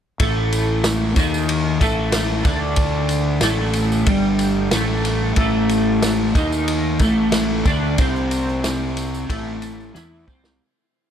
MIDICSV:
0, 0, Header, 1, 4, 480
1, 0, Start_track
1, 0, Tempo, 645856
1, 148, Time_signature, 4, 2, 24, 8
1, 3509, Tempo, 653595
1, 8196, End_track
2, 0, Start_track
2, 0, Title_t, "Clean electric guitar"
2, 0, Program_c, 0, 27
2, 149, Note_on_c, 0, 45, 96
2, 154, Note_on_c, 0, 57, 100
2, 870, Note_off_c, 0, 45, 0
2, 870, Note_on_c, 0, 51, 81
2, 872, Note_off_c, 0, 57, 0
2, 872, Note_on_c, 0, 63, 90
2, 1338, Note_off_c, 0, 51, 0
2, 1340, Note_off_c, 0, 63, 0
2, 1347, Note_on_c, 0, 45, 84
2, 1353, Note_on_c, 0, 57, 89
2, 1817, Note_off_c, 0, 45, 0
2, 1820, Note_off_c, 0, 57, 0
2, 1820, Note_on_c, 0, 50, 86
2, 1829, Note_on_c, 0, 62, 95
2, 2535, Note_off_c, 0, 50, 0
2, 2539, Note_off_c, 0, 62, 0
2, 2542, Note_on_c, 0, 45, 87
2, 2550, Note_on_c, 0, 57, 97
2, 3017, Note_off_c, 0, 45, 0
2, 3021, Note_on_c, 0, 43, 92
2, 3022, Note_off_c, 0, 57, 0
2, 3030, Note_on_c, 0, 55, 99
2, 3499, Note_off_c, 0, 43, 0
2, 3503, Note_off_c, 0, 55, 0
2, 3510, Note_on_c, 0, 45, 92
2, 3516, Note_on_c, 0, 57, 106
2, 3980, Note_off_c, 0, 45, 0
2, 3983, Note_off_c, 0, 57, 0
2, 3988, Note_on_c, 0, 45, 94
2, 3994, Note_on_c, 0, 57, 103
2, 4699, Note_off_c, 0, 45, 0
2, 4702, Note_off_c, 0, 57, 0
2, 4705, Note_on_c, 0, 51, 89
2, 4712, Note_on_c, 0, 63, 84
2, 5178, Note_off_c, 0, 51, 0
2, 5182, Note_off_c, 0, 63, 0
2, 5189, Note_on_c, 0, 45, 88
2, 5196, Note_on_c, 0, 57, 104
2, 5661, Note_off_c, 0, 45, 0
2, 5665, Note_off_c, 0, 57, 0
2, 5670, Note_on_c, 0, 50, 86
2, 5675, Note_on_c, 0, 62, 104
2, 5901, Note_off_c, 0, 50, 0
2, 5904, Note_off_c, 0, 62, 0
2, 5906, Note_on_c, 0, 48, 88
2, 5913, Note_on_c, 0, 60, 104
2, 6861, Note_off_c, 0, 48, 0
2, 6865, Note_off_c, 0, 60, 0
2, 6867, Note_on_c, 0, 45, 77
2, 6871, Note_on_c, 0, 57, 91
2, 7340, Note_off_c, 0, 45, 0
2, 7343, Note_on_c, 0, 52, 89
2, 7344, Note_off_c, 0, 57, 0
2, 7348, Note_on_c, 0, 64, 105
2, 7579, Note_off_c, 0, 52, 0
2, 7582, Note_off_c, 0, 64, 0
2, 7582, Note_on_c, 0, 48, 79
2, 7587, Note_on_c, 0, 60, 96
2, 7819, Note_off_c, 0, 48, 0
2, 7821, Note_off_c, 0, 60, 0
2, 8196, End_track
3, 0, Start_track
3, 0, Title_t, "Fingered electric bass"
3, 0, Program_c, 1, 33
3, 149, Note_on_c, 1, 33, 82
3, 835, Note_off_c, 1, 33, 0
3, 866, Note_on_c, 1, 39, 91
3, 1314, Note_off_c, 1, 39, 0
3, 1345, Note_on_c, 1, 33, 91
3, 1793, Note_off_c, 1, 33, 0
3, 1820, Note_on_c, 1, 38, 85
3, 2512, Note_off_c, 1, 38, 0
3, 2537, Note_on_c, 1, 33, 84
3, 2992, Note_off_c, 1, 33, 0
3, 3019, Note_on_c, 1, 31, 88
3, 3475, Note_off_c, 1, 31, 0
3, 3505, Note_on_c, 1, 33, 82
3, 3956, Note_off_c, 1, 33, 0
3, 3982, Note_on_c, 1, 33, 82
3, 4674, Note_off_c, 1, 33, 0
3, 4706, Note_on_c, 1, 39, 97
3, 5157, Note_off_c, 1, 39, 0
3, 5181, Note_on_c, 1, 33, 94
3, 5635, Note_off_c, 1, 33, 0
3, 5662, Note_on_c, 1, 38, 94
3, 5888, Note_off_c, 1, 38, 0
3, 5905, Note_on_c, 1, 36, 89
3, 6839, Note_off_c, 1, 36, 0
3, 6866, Note_on_c, 1, 33, 81
3, 7319, Note_off_c, 1, 33, 0
3, 7351, Note_on_c, 1, 40, 88
3, 7574, Note_off_c, 1, 40, 0
3, 7588, Note_on_c, 1, 36, 91
3, 7812, Note_off_c, 1, 36, 0
3, 8196, End_track
4, 0, Start_track
4, 0, Title_t, "Drums"
4, 146, Note_on_c, 9, 51, 91
4, 149, Note_on_c, 9, 36, 93
4, 156, Note_on_c, 9, 54, 30
4, 220, Note_off_c, 9, 51, 0
4, 223, Note_off_c, 9, 36, 0
4, 230, Note_off_c, 9, 54, 0
4, 390, Note_on_c, 9, 51, 65
4, 392, Note_on_c, 9, 54, 74
4, 464, Note_off_c, 9, 51, 0
4, 466, Note_off_c, 9, 54, 0
4, 623, Note_on_c, 9, 51, 78
4, 624, Note_on_c, 9, 38, 98
4, 629, Note_on_c, 9, 54, 98
4, 697, Note_off_c, 9, 51, 0
4, 698, Note_off_c, 9, 38, 0
4, 703, Note_off_c, 9, 54, 0
4, 862, Note_on_c, 9, 51, 74
4, 865, Note_on_c, 9, 36, 101
4, 869, Note_on_c, 9, 54, 67
4, 936, Note_off_c, 9, 51, 0
4, 939, Note_off_c, 9, 36, 0
4, 943, Note_off_c, 9, 54, 0
4, 996, Note_on_c, 9, 54, 70
4, 1070, Note_off_c, 9, 54, 0
4, 1105, Note_on_c, 9, 51, 88
4, 1179, Note_off_c, 9, 51, 0
4, 1345, Note_on_c, 9, 36, 98
4, 1345, Note_on_c, 9, 51, 65
4, 1353, Note_on_c, 9, 54, 68
4, 1419, Note_off_c, 9, 36, 0
4, 1420, Note_off_c, 9, 51, 0
4, 1427, Note_off_c, 9, 54, 0
4, 1577, Note_on_c, 9, 51, 101
4, 1578, Note_on_c, 9, 38, 97
4, 1591, Note_on_c, 9, 54, 83
4, 1652, Note_off_c, 9, 38, 0
4, 1652, Note_off_c, 9, 51, 0
4, 1666, Note_off_c, 9, 54, 0
4, 1819, Note_on_c, 9, 38, 31
4, 1819, Note_on_c, 9, 51, 69
4, 1821, Note_on_c, 9, 36, 102
4, 1831, Note_on_c, 9, 54, 30
4, 1893, Note_off_c, 9, 51, 0
4, 1894, Note_off_c, 9, 38, 0
4, 1895, Note_off_c, 9, 36, 0
4, 1905, Note_off_c, 9, 54, 0
4, 2052, Note_on_c, 9, 51, 84
4, 2060, Note_on_c, 9, 36, 103
4, 2070, Note_on_c, 9, 54, 25
4, 2127, Note_off_c, 9, 51, 0
4, 2135, Note_off_c, 9, 36, 0
4, 2145, Note_off_c, 9, 54, 0
4, 2294, Note_on_c, 9, 51, 65
4, 2308, Note_on_c, 9, 54, 73
4, 2369, Note_off_c, 9, 51, 0
4, 2382, Note_off_c, 9, 54, 0
4, 2532, Note_on_c, 9, 51, 88
4, 2533, Note_on_c, 9, 38, 91
4, 2549, Note_on_c, 9, 54, 97
4, 2606, Note_off_c, 9, 51, 0
4, 2607, Note_off_c, 9, 38, 0
4, 2624, Note_off_c, 9, 54, 0
4, 2775, Note_on_c, 9, 51, 64
4, 2791, Note_on_c, 9, 54, 65
4, 2849, Note_off_c, 9, 51, 0
4, 2865, Note_off_c, 9, 54, 0
4, 2912, Note_on_c, 9, 54, 73
4, 2986, Note_off_c, 9, 54, 0
4, 3020, Note_on_c, 9, 51, 92
4, 3023, Note_on_c, 9, 36, 105
4, 3094, Note_off_c, 9, 51, 0
4, 3098, Note_off_c, 9, 36, 0
4, 3261, Note_on_c, 9, 51, 59
4, 3277, Note_on_c, 9, 54, 65
4, 3335, Note_off_c, 9, 51, 0
4, 3351, Note_off_c, 9, 54, 0
4, 3502, Note_on_c, 9, 51, 87
4, 3503, Note_on_c, 9, 38, 112
4, 3513, Note_on_c, 9, 54, 82
4, 3576, Note_off_c, 9, 51, 0
4, 3577, Note_off_c, 9, 38, 0
4, 3586, Note_off_c, 9, 54, 0
4, 3748, Note_on_c, 9, 51, 65
4, 3749, Note_on_c, 9, 38, 31
4, 3753, Note_on_c, 9, 54, 24
4, 3822, Note_off_c, 9, 38, 0
4, 3822, Note_off_c, 9, 51, 0
4, 3827, Note_off_c, 9, 54, 0
4, 3979, Note_on_c, 9, 51, 85
4, 3985, Note_on_c, 9, 36, 97
4, 3995, Note_on_c, 9, 54, 26
4, 4052, Note_off_c, 9, 51, 0
4, 4059, Note_off_c, 9, 36, 0
4, 4068, Note_off_c, 9, 54, 0
4, 4223, Note_on_c, 9, 51, 69
4, 4236, Note_on_c, 9, 54, 71
4, 4296, Note_off_c, 9, 51, 0
4, 4309, Note_off_c, 9, 54, 0
4, 4465, Note_on_c, 9, 51, 83
4, 4466, Note_on_c, 9, 38, 103
4, 4468, Note_on_c, 9, 54, 90
4, 4539, Note_off_c, 9, 38, 0
4, 4539, Note_off_c, 9, 51, 0
4, 4542, Note_off_c, 9, 54, 0
4, 4706, Note_on_c, 9, 36, 98
4, 4706, Note_on_c, 9, 51, 65
4, 4710, Note_on_c, 9, 54, 65
4, 4780, Note_off_c, 9, 36, 0
4, 4780, Note_off_c, 9, 51, 0
4, 4784, Note_off_c, 9, 54, 0
4, 4833, Note_on_c, 9, 54, 68
4, 4907, Note_off_c, 9, 54, 0
4, 4945, Note_on_c, 9, 51, 85
4, 5018, Note_off_c, 9, 51, 0
4, 5177, Note_on_c, 9, 51, 62
4, 5184, Note_on_c, 9, 36, 102
4, 5192, Note_on_c, 9, 54, 67
4, 5251, Note_off_c, 9, 51, 0
4, 5257, Note_off_c, 9, 36, 0
4, 5266, Note_off_c, 9, 54, 0
4, 5417, Note_on_c, 9, 51, 97
4, 5418, Note_on_c, 9, 38, 101
4, 5432, Note_on_c, 9, 54, 85
4, 5491, Note_off_c, 9, 38, 0
4, 5491, Note_off_c, 9, 51, 0
4, 5506, Note_off_c, 9, 54, 0
4, 5662, Note_on_c, 9, 51, 66
4, 5663, Note_on_c, 9, 38, 29
4, 5664, Note_on_c, 9, 36, 99
4, 5673, Note_on_c, 9, 54, 27
4, 5736, Note_off_c, 9, 38, 0
4, 5736, Note_off_c, 9, 51, 0
4, 5737, Note_off_c, 9, 36, 0
4, 5746, Note_off_c, 9, 54, 0
4, 5902, Note_on_c, 9, 51, 91
4, 5907, Note_on_c, 9, 36, 98
4, 5915, Note_on_c, 9, 54, 29
4, 5976, Note_off_c, 9, 51, 0
4, 5980, Note_off_c, 9, 36, 0
4, 5988, Note_off_c, 9, 54, 0
4, 6035, Note_on_c, 9, 54, 25
4, 6108, Note_off_c, 9, 54, 0
4, 6145, Note_on_c, 9, 51, 70
4, 6153, Note_on_c, 9, 54, 81
4, 6219, Note_off_c, 9, 51, 0
4, 6226, Note_off_c, 9, 54, 0
4, 6277, Note_on_c, 9, 54, 25
4, 6351, Note_off_c, 9, 54, 0
4, 6387, Note_on_c, 9, 38, 101
4, 6387, Note_on_c, 9, 51, 84
4, 6394, Note_on_c, 9, 54, 98
4, 6460, Note_off_c, 9, 51, 0
4, 6461, Note_off_c, 9, 38, 0
4, 6467, Note_off_c, 9, 54, 0
4, 6521, Note_on_c, 9, 54, 27
4, 6594, Note_off_c, 9, 54, 0
4, 6627, Note_on_c, 9, 51, 71
4, 6639, Note_on_c, 9, 54, 70
4, 6700, Note_off_c, 9, 51, 0
4, 6712, Note_off_c, 9, 54, 0
4, 6757, Note_on_c, 9, 54, 73
4, 6830, Note_off_c, 9, 54, 0
4, 6869, Note_on_c, 9, 36, 98
4, 6871, Note_on_c, 9, 51, 88
4, 6882, Note_on_c, 9, 54, 26
4, 6943, Note_off_c, 9, 36, 0
4, 6944, Note_off_c, 9, 51, 0
4, 6956, Note_off_c, 9, 54, 0
4, 7106, Note_on_c, 9, 51, 61
4, 7115, Note_on_c, 9, 54, 68
4, 7179, Note_off_c, 9, 51, 0
4, 7189, Note_off_c, 9, 54, 0
4, 7241, Note_on_c, 9, 54, 30
4, 7314, Note_off_c, 9, 54, 0
4, 7348, Note_on_c, 9, 38, 58
4, 7354, Note_on_c, 9, 54, 96
4, 7421, Note_off_c, 9, 38, 0
4, 7428, Note_off_c, 9, 54, 0
4, 7589, Note_on_c, 9, 36, 82
4, 7596, Note_on_c, 9, 54, 28
4, 7663, Note_off_c, 9, 36, 0
4, 7669, Note_off_c, 9, 54, 0
4, 7707, Note_on_c, 9, 38, 84
4, 7714, Note_on_c, 9, 54, 29
4, 7780, Note_off_c, 9, 38, 0
4, 7787, Note_off_c, 9, 54, 0
4, 8196, End_track
0, 0, End_of_file